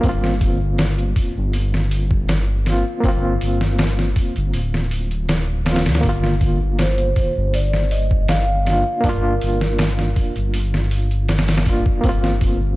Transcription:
0.01 detuned saw bass G1, reed electric piano A#3, kick, open hi-hat
0.05 reed electric piano C4
0.09 reed electric piano F4
0.24 snare
0.41 kick, open hi-hat
0.78 snare, open hi-hat
0.98 closed hi-hat
1.16 kick, open hi-hat
1.37 detuned saw bass G1
1.53 open hi-hat
1.74 snare
1.91 open hi-hat
2.11 kick
2.29 snare, open hi-hat
2.65 reed electric piano A#3 C4, snare, open hi-hat
2.70 reed electric piano F4
3.00 detuned saw bass G1, reed electric piano A#3, kick, open hi-hat
3.05 reed electric piano C4 F4
3.41 detuned saw bass G1, open hi-hat
3.61 snare
3.79 snare, open hi-hat
3.99 snare
4.16 kick, open hi-hat
4.36 detuned saw bass G1, closed hi-hat
4.54 detuned saw bass D1, open hi-hat
4.74 snare
4.91 open hi-hat
5.11 closed hi-hat
5.29 snare, open hi-hat
5.65 reed electric piano A#3 C4, snare, open hi-hat
5.69 reed electric piano F4
5.76 snare, open hi-hat
5.86 detuned saw bass D2, snare, open hi-hat
5.94 snare, open hi-hat
6.01 detuned saw bass G1, reed electric piano A#3, kick, open hi-hat
6.05 reed electric piano D3
6.09 reed electric piano F4
6.24 snare
6.41 kick, open hi-hat
6.79 vibraphone C5, snare, open hi-hat
6.98 closed hi-hat
7.16 kick, open hi-hat
7.37 detuned saw bass G1
7.54 vibraphone D5, open hi-hat
7.73 snare
7.91 vibraphone D#5, open hi-hat
8.11 kick
8.28 vibraphone F5, snare, open hi-hat
8.65 reed electric piano A#3 D4, snare, open hi-hat
8.69 reed electric piano F4
9.01 detuned saw bass G1, reed electric piano A#3, vibraphone A#4, kick, open hi-hat
9.05 reed electric piano D4
9.09 reed electric piano F4
9.41 detuned saw bass G1, open hi-hat
9.61 snare
9.79 snare, open hi-hat
9.99 snare
10.16 kick, open hi-hat
10.36 detuned saw bass G1, closed hi-hat
10.54 open hi-hat
10.74 snare
10.91 open hi-hat
11.11 closed hi-hat
11.29 snare, open hi-hat
11.38 snare, open hi-hat
11.48 snare, open hi-hat
11.57 snare, open hi-hat
11.65 reed electric piano A#3 D4, kick, open hi-hat
11.70 reed electric piano F4
11.86 kick
12.01 detuned saw bass G1, reed electric piano A#3, kick, open hi-hat
12.05 reed electric piano C4
12.09 reed electric piano F4
12.24 snare
12.41 kick, open hi-hat

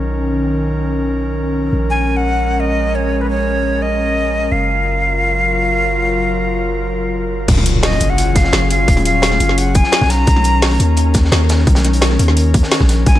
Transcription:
Already playing: 808-style bass B1, analog synth pad D#3 C#4 A#4
1.73 808-style bass A#1, analog synth pad G#3
1.90 flute G#5
2.17 flute F#5
2.60 flute D#5
2.95 flute C#5
3.21 flute B4
3.30 flute C#5
3.82 flute D#5
4.52 808-style bass F#1, analog synth pad F#3 F4 A#4, flute F5
7.48 808-style bass D#1, analog synth pad F#3 C#4 F4 G#4, kick, closed hi-hat, crash, impact
7.57 snare
7.66 closed hi-hat
7.83 flute D#5, snare, closed hi-hat, open hi-hat
7.92 snare
8.00 808-style bass F#1, closed hi-hat
8.10 flute F#5
8.18 closed hi-hat
8.35 flute F5, kick, snare, closed hi-hat
8.44 snare
8.53 808-style bass F#1, snare, closed hi-hat
8.70 flute F5, closed hi-hat
8.88 808-style bass D#1, kick, closed hi-hat
8.97 snare, closed hi-hat
9.05 flute F5, closed hi-hat
9.22 snare, closed hi-hat
9.31 snare
9.40 808-style bass F#1, closed hi-hat
9.49 snare
9.58 flute F#5, closed hi-hat
9.75 flute G#5, kick, closed hi-hat
9.84 snare
9.92 snare, closed hi-hat
10.01 808-style bass B1, kick, snare
10.09 analog synth pad D#3 A#4, flute A#5, snare, closed hi-hat
10.27 808-style bass B1, kick, closed hi-hat
10.36 snare
10.44 closed hi-hat
10.62 snare, closed hi-hat, open hi-hat
10.71 snare
10.80 808-style bass D#2, closed hi-hat
10.97 closed hi-hat
11.14 kick, snare, closed hi-hat
11.25 snare
11.32 808-style bass D#2, snare, closed hi-hat
11.49 snare, closed hi-hat
11.59 snare
11.67 808-style bass B1, kick, closed hi-hat
11.75 snare, closed hi-hat
11.84 snare, closed hi-hat
11.93 closed hi-hat
12.02 snare, closed hi-hat
12.11 snare
12.19 808-style bass D#2, closed hi-hat
12.28 snare
12.37 closed hi-hat
12.54 kick, closed hi-hat
12.63 snare
12.71 snare, closed hi-hat
12.80 808-style bass A#1, kick, snare
12.89 analog synth pad G#3, snare, closed hi-hat
13.06 808-style bass A#1, flute G#5, kick, closed hi-hat
13.15 snare

